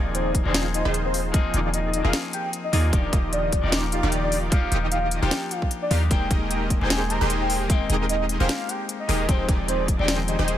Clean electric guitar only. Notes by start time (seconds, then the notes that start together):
Already playing: F3 A#3 C4 D#4 G#4
0.43 F3 A#3 C4 D#4
0.47 G#4
1.32 F3 A#3 C4 D#4
1.36 G#4
2.02 F3 A#3 C4 D#4
2.06 G#4
2.72 F3 A#3 C4 D#4 G#4
2.91 F3 A#3 D#4
2.95 G4
3.61 F3 A#3 D#4 G4 D5
4.50 F3 A#3 D#4
4.54 G4
5.20 F3 A#3 D4 D#4 G4
5.90 F3 A#3 D4 D#4 G4
6.09 G#3 A#3 C4 D#4 G5
6.79 G#3 A#3 C4 D#4 G5
7.68 G#3 A#3 C4 D#4 G5
8.38 G#3 A#3 C4 D#4 G4
9.08 G#3 A#3 C4 D#4 G4
9.26 F3 G#3 C4 D#4
9.30 G5
9.97 F3 G#3 C4 D#4
10.01 G5